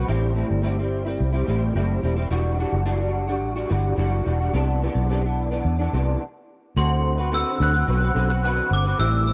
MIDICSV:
0, 0, Header, 1, 4, 480
1, 0, Start_track
1, 0, Tempo, 556070
1, 76, Time_signature, 4, 2, 24, 8
1, 8056, End_track
2, 0, Start_track
2, 0, Title_t, "Glockenspiel"
2, 0, Program_c, 0, 9
2, 5848, Note_on_c, 0, 84, 86
2, 6337, Note_off_c, 0, 84, 0
2, 6338, Note_on_c, 0, 88, 86
2, 6552, Note_off_c, 0, 88, 0
2, 6582, Note_on_c, 0, 90, 98
2, 7135, Note_off_c, 0, 90, 0
2, 7168, Note_on_c, 0, 90, 94
2, 7497, Note_off_c, 0, 90, 0
2, 7539, Note_on_c, 0, 86, 86
2, 7752, Note_off_c, 0, 86, 0
2, 7766, Note_on_c, 0, 88, 103
2, 7984, Note_off_c, 0, 88, 0
2, 8004, Note_on_c, 0, 88, 85
2, 8056, Note_off_c, 0, 88, 0
2, 8056, End_track
3, 0, Start_track
3, 0, Title_t, "Clean electric guitar"
3, 0, Program_c, 1, 27
3, 60, Note_on_c, 1, 45, 80
3, 69, Note_on_c, 1, 55, 82
3, 71, Note_on_c, 1, 60, 83
3, 75, Note_on_c, 1, 64, 93
3, 287, Note_off_c, 1, 45, 0
3, 290, Note_off_c, 1, 55, 0
3, 297, Note_on_c, 1, 45, 57
3, 300, Note_on_c, 1, 55, 55
3, 301, Note_off_c, 1, 60, 0
3, 302, Note_off_c, 1, 64, 0
3, 312, Note_on_c, 1, 60, 57
3, 313, Note_on_c, 1, 64, 62
3, 525, Note_off_c, 1, 45, 0
3, 535, Note_on_c, 1, 45, 76
3, 536, Note_off_c, 1, 55, 0
3, 537, Note_off_c, 1, 60, 0
3, 540, Note_off_c, 1, 64, 0
3, 546, Note_on_c, 1, 55, 77
3, 547, Note_on_c, 1, 60, 79
3, 550, Note_on_c, 1, 64, 75
3, 659, Note_off_c, 1, 64, 0
3, 666, Note_off_c, 1, 45, 0
3, 669, Note_on_c, 1, 64, 53
3, 671, Note_off_c, 1, 55, 0
3, 672, Note_off_c, 1, 60, 0
3, 684, Note_on_c, 1, 60, 45
3, 687, Note_on_c, 1, 55, 46
3, 896, Note_off_c, 1, 64, 0
3, 906, Note_on_c, 1, 64, 48
3, 909, Note_off_c, 1, 60, 0
3, 913, Note_off_c, 1, 55, 0
3, 919, Note_on_c, 1, 60, 49
3, 923, Note_on_c, 1, 55, 42
3, 1134, Note_off_c, 1, 64, 0
3, 1144, Note_on_c, 1, 64, 54
3, 1145, Note_off_c, 1, 60, 0
3, 1153, Note_off_c, 1, 55, 0
3, 1155, Note_on_c, 1, 60, 48
3, 1163, Note_on_c, 1, 55, 45
3, 1261, Note_off_c, 1, 55, 0
3, 1264, Note_on_c, 1, 45, 65
3, 1271, Note_off_c, 1, 64, 0
3, 1271, Note_on_c, 1, 55, 68
3, 1272, Note_off_c, 1, 60, 0
3, 1282, Note_on_c, 1, 60, 67
3, 1284, Note_on_c, 1, 64, 67
3, 1503, Note_off_c, 1, 45, 0
3, 1503, Note_off_c, 1, 55, 0
3, 1511, Note_off_c, 1, 60, 0
3, 1513, Note_on_c, 1, 45, 75
3, 1514, Note_on_c, 1, 55, 77
3, 1517, Note_off_c, 1, 64, 0
3, 1521, Note_on_c, 1, 60, 83
3, 1528, Note_on_c, 1, 64, 75
3, 1734, Note_off_c, 1, 45, 0
3, 1741, Note_off_c, 1, 55, 0
3, 1744, Note_on_c, 1, 45, 51
3, 1747, Note_off_c, 1, 60, 0
3, 1752, Note_on_c, 1, 55, 61
3, 1755, Note_off_c, 1, 64, 0
3, 1758, Note_on_c, 1, 60, 62
3, 1765, Note_on_c, 1, 64, 60
3, 1851, Note_off_c, 1, 64, 0
3, 1857, Note_off_c, 1, 60, 0
3, 1862, Note_on_c, 1, 64, 57
3, 1868, Note_on_c, 1, 60, 58
3, 1870, Note_off_c, 1, 55, 0
3, 1871, Note_off_c, 1, 45, 0
3, 1880, Note_on_c, 1, 55, 49
3, 1980, Note_off_c, 1, 55, 0
3, 1990, Note_off_c, 1, 64, 0
3, 1991, Note_off_c, 1, 60, 0
3, 1991, Note_on_c, 1, 52, 82
3, 1991, Note_on_c, 1, 55, 94
3, 1994, Note_on_c, 1, 62, 84
3, 2000, Note_on_c, 1, 66, 81
3, 2217, Note_off_c, 1, 52, 0
3, 2224, Note_off_c, 1, 55, 0
3, 2227, Note_on_c, 1, 52, 60
3, 2231, Note_off_c, 1, 62, 0
3, 2234, Note_off_c, 1, 66, 0
3, 2235, Note_on_c, 1, 55, 55
3, 2241, Note_on_c, 1, 62, 62
3, 2244, Note_on_c, 1, 66, 65
3, 2453, Note_off_c, 1, 55, 0
3, 2454, Note_off_c, 1, 52, 0
3, 2455, Note_off_c, 1, 62, 0
3, 2461, Note_off_c, 1, 66, 0
3, 2464, Note_on_c, 1, 52, 75
3, 2464, Note_on_c, 1, 55, 84
3, 2465, Note_on_c, 1, 62, 83
3, 2472, Note_on_c, 1, 66, 81
3, 2571, Note_off_c, 1, 66, 0
3, 2581, Note_on_c, 1, 66, 54
3, 2584, Note_off_c, 1, 62, 0
3, 2589, Note_off_c, 1, 55, 0
3, 2591, Note_off_c, 1, 52, 0
3, 2594, Note_on_c, 1, 62, 45
3, 2599, Note_on_c, 1, 55, 43
3, 2816, Note_off_c, 1, 66, 0
3, 2827, Note_on_c, 1, 66, 50
3, 2828, Note_off_c, 1, 62, 0
3, 2834, Note_off_c, 1, 55, 0
3, 2838, Note_on_c, 1, 62, 45
3, 2845, Note_on_c, 1, 55, 43
3, 3060, Note_off_c, 1, 66, 0
3, 3069, Note_off_c, 1, 62, 0
3, 3070, Note_on_c, 1, 66, 54
3, 3079, Note_off_c, 1, 55, 0
3, 3079, Note_on_c, 1, 62, 48
3, 3089, Note_on_c, 1, 55, 43
3, 3179, Note_off_c, 1, 55, 0
3, 3185, Note_on_c, 1, 52, 59
3, 3189, Note_off_c, 1, 62, 0
3, 3189, Note_on_c, 1, 55, 73
3, 3194, Note_off_c, 1, 66, 0
3, 3199, Note_on_c, 1, 62, 59
3, 3206, Note_on_c, 1, 66, 67
3, 3411, Note_off_c, 1, 52, 0
3, 3421, Note_off_c, 1, 55, 0
3, 3421, Note_on_c, 1, 52, 76
3, 3423, Note_off_c, 1, 62, 0
3, 3426, Note_off_c, 1, 66, 0
3, 3431, Note_on_c, 1, 55, 79
3, 3433, Note_on_c, 1, 62, 75
3, 3437, Note_on_c, 1, 66, 87
3, 3654, Note_off_c, 1, 52, 0
3, 3663, Note_off_c, 1, 55, 0
3, 3664, Note_on_c, 1, 52, 54
3, 3666, Note_off_c, 1, 62, 0
3, 3674, Note_on_c, 1, 55, 57
3, 3675, Note_off_c, 1, 66, 0
3, 3676, Note_on_c, 1, 62, 61
3, 3685, Note_on_c, 1, 66, 61
3, 3787, Note_off_c, 1, 66, 0
3, 3792, Note_off_c, 1, 52, 0
3, 3796, Note_off_c, 1, 55, 0
3, 3797, Note_on_c, 1, 66, 58
3, 3798, Note_off_c, 1, 62, 0
3, 3808, Note_on_c, 1, 62, 48
3, 3813, Note_on_c, 1, 55, 42
3, 3915, Note_on_c, 1, 48, 79
3, 3916, Note_off_c, 1, 55, 0
3, 3918, Note_off_c, 1, 66, 0
3, 3919, Note_off_c, 1, 62, 0
3, 3920, Note_on_c, 1, 52, 74
3, 3925, Note_on_c, 1, 59, 95
3, 3929, Note_on_c, 1, 62, 96
3, 4149, Note_off_c, 1, 48, 0
3, 4159, Note_off_c, 1, 52, 0
3, 4159, Note_on_c, 1, 48, 63
3, 4162, Note_off_c, 1, 59, 0
3, 4164, Note_off_c, 1, 62, 0
3, 4170, Note_on_c, 1, 52, 64
3, 4173, Note_on_c, 1, 59, 62
3, 4179, Note_on_c, 1, 62, 61
3, 4387, Note_off_c, 1, 48, 0
3, 4394, Note_off_c, 1, 52, 0
3, 4397, Note_on_c, 1, 48, 74
3, 4400, Note_off_c, 1, 59, 0
3, 4404, Note_on_c, 1, 52, 79
3, 4405, Note_off_c, 1, 62, 0
3, 4411, Note_on_c, 1, 59, 88
3, 4416, Note_on_c, 1, 62, 89
3, 4505, Note_off_c, 1, 62, 0
3, 4515, Note_off_c, 1, 59, 0
3, 4515, Note_on_c, 1, 62, 50
3, 4518, Note_off_c, 1, 48, 0
3, 4521, Note_off_c, 1, 52, 0
3, 4525, Note_on_c, 1, 59, 48
3, 4531, Note_on_c, 1, 52, 43
3, 4747, Note_off_c, 1, 62, 0
3, 4753, Note_off_c, 1, 59, 0
3, 4757, Note_on_c, 1, 62, 48
3, 4763, Note_on_c, 1, 59, 45
3, 4765, Note_off_c, 1, 52, 0
3, 4777, Note_on_c, 1, 52, 41
3, 4986, Note_off_c, 1, 62, 0
3, 4996, Note_off_c, 1, 59, 0
3, 4996, Note_on_c, 1, 62, 51
3, 5004, Note_off_c, 1, 52, 0
3, 5007, Note_on_c, 1, 59, 43
3, 5014, Note_on_c, 1, 52, 44
3, 5114, Note_off_c, 1, 52, 0
3, 5118, Note_off_c, 1, 62, 0
3, 5120, Note_on_c, 1, 48, 64
3, 5123, Note_off_c, 1, 59, 0
3, 5125, Note_on_c, 1, 52, 64
3, 5132, Note_on_c, 1, 59, 64
3, 5139, Note_on_c, 1, 62, 65
3, 5360, Note_off_c, 1, 48, 0
3, 5362, Note_off_c, 1, 52, 0
3, 5365, Note_off_c, 1, 59, 0
3, 5369, Note_off_c, 1, 62, 0
3, 5841, Note_on_c, 1, 50, 88
3, 5849, Note_on_c, 1, 66, 87
3, 5850, Note_on_c, 1, 60, 82
3, 6193, Note_on_c, 1, 71, 49
3, 6194, Note_off_c, 1, 66, 0
3, 6200, Note_off_c, 1, 50, 0
3, 6204, Note_off_c, 1, 60, 0
3, 6205, Note_on_c, 1, 66, 49
3, 6213, Note_on_c, 1, 60, 41
3, 6306, Note_off_c, 1, 60, 0
3, 6313, Note_off_c, 1, 66, 0
3, 6316, Note_off_c, 1, 71, 0
3, 6316, Note_on_c, 1, 60, 80
3, 6317, Note_on_c, 1, 50, 69
3, 6323, Note_on_c, 1, 66, 71
3, 6326, Note_on_c, 1, 71, 72
3, 6545, Note_off_c, 1, 50, 0
3, 6556, Note_on_c, 1, 50, 56
3, 6557, Note_off_c, 1, 60, 0
3, 6560, Note_off_c, 1, 66, 0
3, 6562, Note_off_c, 1, 71, 0
3, 6567, Note_on_c, 1, 60, 57
3, 6572, Note_on_c, 1, 66, 54
3, 6579, Note_on_c, 1, 71, 59
3, 6666, Note_off_c, 1, 71, 0
3, 6676, Note_on_c, 1, 71, 44
3, 6677, Note_off_c, 1, 50, 0
3, 6678, Note_off_c, 1, 66, 0
3, 6682, Note_off_c, 1, 60, 0
3, 6689, Note_on_c, 1, 66, 42
3, 6693, Note_on_c, 1, 60, 36
3, 6787, Note_off_c, 1, 60, 0
3, 6796, Note_on_c, 1, 50, 56
3, 6797, Note_off_c, 1, 66, 0
3, 6797, Note_off_c, 1, 71, 0
3, 6797, Note_on_c, 1, 60, 64
3, 6808, Note_on_c, 1, 66, 61
3, 6815, Note_on_c, 1, 71, 61
3, 6899, Note_off_c, 1, 71, 0
3, 6906, Note_off_c, 1, 66, 0
3, 6909, Note_on_c, 1, 71, 52
3, 6914, Note_off_c, 1, 60, 0
3, 6917, Note_off_c, 1, 50, 0
3, 6917, Note_on_c, 1, 66, 47
3, 6924, Note_on_c, 1, 60, 45
3, 7026, Note_off_c, 1, 60, 0
3, 7030, Note_on_c, 1, 50, 56
3, 7033, Note_off_c, 1, 66, 0
3, 7033, Note_off_c, 1, 71, 0
3, 7036, Note_on_c, 1, 60, 64
3, 7043, Note_on_c, 1, 66, 68
3, 7048, Note_on_c, 1, 71, 68
3, 7142, Note_off_c, 1, 71, 0
3, 7149, Note_off_c, 1, 66, 0
3, 7152, Note_on_c, 1, 71, 51
3, 7154, Note_off_c, 1, 50, 0
3, 7157, Note_off_c, 1, 60, 0
3, 7159, Note_on_c, 1, 66, 45
3, 7172, Note_on_c, 1, 60, 43
3, 7275, Note_off_c, 1, 71, 0
3, 7276, Note_off_c, 1, 60, 0
3, 7278, Note_off_c, 1, 66, 0
3, 7279, Note_on_c, 1, 50, 69
3, 7286, Note_on_c, 1, 60, 71
3, 7290, Note_on_c, 1, 66, 79
3, 7296, Note_on_c, 1, 71, 89
3, 7625, Note_off_c, 1, 71, 0
3, 7636, Note_on_c, 1, 71, 56
3, 7638, Note_off_c, 1, 50, 0
3, 7639, Note_off_c, 1, 66, 0
3, 7641, Note_off_c, 1, 60, 0
3, 7649, Note_on_c, 1, 66, 42
3, 7655, Note_on_c, 1, 60, 40
3, 7752, Note_on_c, 1, 45, 84
3, 7753, Note_off_c, 1, 60, 0
3, 7756, Note_off_c, 1, 71, 0
3, 7757, Note_on_c, 1, 55, 81
3, 7762, Note_off_c, 1, 66, 0
3, 7763, Note_on_c, 1, 60, 84
3, 7765, Note_on_c, 1, 64, 87
3, 8056, Note_off_c, 1, 45, 0
3, 8056, Note_off_c, 1, 55, 0
3, 8056, Note_off_c, 1, 60, 0
3, 8056, Note_off_c, 1, 64, 0
3, 8056, End_track
4, 0, Start_track
4, 0, Title_t, "Fingered electric bass"
4, 0, Program_c, 2, 33
4, 77, Note_on_c, 2, 33, 92
4, 365, Note_off_c, 2, 33, 0
4, 435, Note_on_c, 2, 31, 69
4, 1006, Note_off_c, 2, 31, 0
4, 1039, Note_on_c, 2, 36, 88
4, 1230, Note_off_c, 2, 36, 0
4, 1278, Note_on_c, 2, 33, 73
4, 1470, Note_off_c, 2, 33, 0
4, 1513, Note_on_c, 2, 30, 83
4, 1707, Note_off_c, 2, 30, 0
4, 1756, Note_on_c, 2, 28, 75
4, 1949, Note_off_c, 2, 28, 0
4, 1991, Note_on_c, 2, 28, 90
4, 2282, Note_off_c, 2, 28, 0
4, 2352, Note_on_c, 2, 30, 74
4, 2960, Note_off_c, 2, 30, 0
4, 2960, Note_on_c, 2, 33, 85
4, 3151, Note_off_c, 2, 33, 0
4, 3201, Note_on_c, 2, 31, 79
4, 3392, Note_off_c, 2, 31, 0
4, 3433, Note_on_c, 2, 30, 93
4, 3627, Note_off_c, 2, 30, 0
4, 3681, Note_on_c, 2, 28, 76
4, 3872, Note_off_c, 2, 28, 0
4, 3915, Note_on_c, 2, 36, 89
4, 4204, Note_off_c, 2, 36, 0
4, 4274, Note_on_c, 2, 35, 76
4, 4846, Note_off_c, 2, 35, 0
4, 4876, Note_on_c, 2, 40, 86
4, 5069, Note_off_c, 2, 40, 0
4, 5120, Note_on_c, 2, 36, 72
4, 5311, Note_off_c, 2, 36, 0
4, 5839, Note_on_c, 2, 38, 91
4, 6409, Note_off_c, 2, 38, 0
4, 6562, Note_on_c, 2, 38, 103
4, 6752, Note_off_c, 2, 38, 0
4, 6802, Note_on_c, 2, 35, 96
4, 6992, Note_off_c, 2, 35, 0
4, 7036, Note_on_c, 2, 35, 85
4, 7420, Note_off_c, 2, 35, 0
4, 7517, Note_on_c, 2, 31, 82
4, 7709, Note_off_c, 2, 31, 0
4, 7761, Note_on_c, 2, 33, 100
4, 8056, Note_off_c, 2, 33, 0
4, 8056, End_track
0, 0, End_of_file